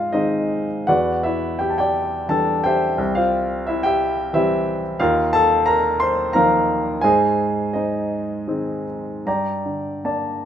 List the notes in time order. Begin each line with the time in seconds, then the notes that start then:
Already playing: G#2 F4 G#4 C5 D#5 F5 G#5
0.13 D#3 G#3 C4 D#4 C5 D#5
0.87 E2 F#4 B4 D5 F#5
1.23 E4 E5
1.59 G4 G5
1.70 A5
1.78 G4 D5 G5
2.29 E3 G3 D4 A4 A5
2.64 G4 C5 E5 G5
2.98 C2
3.15 F4 C5 F5
3.67 E4 E5
3.83 G4 E5 G5
4.33 E3 G3 C4 E4 G4 E5
5.00 D#2 F4 A#4 F5
5.33 A4 A5
5.66 A#4 A#5
6.00 C5 C6
6.33 D#3 F3 A#3 A#4 F5 A#5
7.01 G#2 G#4 C5 D#5 G#5
7.73 D#4 C5 D#5
8.48 D#3 G#3 C4
9.26 G2 D5 G5 A#5
9.66 D3
10.04 A#3 D5 A5